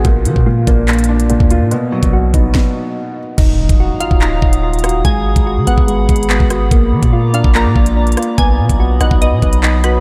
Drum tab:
CC |------------------------------------------------------------------------------------------------|------------------------------------------------------------------------------------------------|x-----------------------------------------------------------------------------------------------|------------------------------------------------------------------------------------------------|
HH |x-----------x-----------------------x-----------x--x--x--x--------x-----x-----------x-----------|x-----------------x-----------------x-----------------------------------------------------------|x-----------------x-----------------x-----------------------------x-----------x--x--x--x--------|x-----------------x-----------------x-----------x-----------x---x---x---------------x-----------|
CP |------------------------------------------------x-----------------------------------------------|------------------------------------------------------------------------------------------------|------------------------------------------------x-----------------------------------------------|------------------------------------------------------------------------x-----------------------|
SD |------------------------------------------------------------------------------------------------|------------------------------------------------o-----------------------------------------------|------------------------------------------------------------------------------------r-----------|------------------------------------------------------------------------------------r-----------|
BD |o-----------------o-----------------o-----------------------------------------o-----------------|------------------o-----------------o-----------o-----------------------------------------------|o-----------------o-----------------------o-----------------o-----------------------------------|o-----------------o-----------------------o-----------------o-----------------o-----------------|

CC |------------------------------------------------------------------------------------------------|------------------------------------------------------------------------------------------------|
HH |x-----------------x-----------------x-----------------------------x-----------x--x--x--x--------|x-----------------x-----------------x-----------x-----------x-----x-----------------x-----------|
CP |------------------------------------------------x-----------------------------------------------|------------------------------------------------------------------------x-----------------------|
SD |------------------------------------------------------------------------------------r-----------|------------------------------------r-----------------------------------------------r-----------|
BD |o-----------------o-----------------------o-----------------o-----------------------------------|o-----------------o-----------------------o-----------------o-----------------------------------|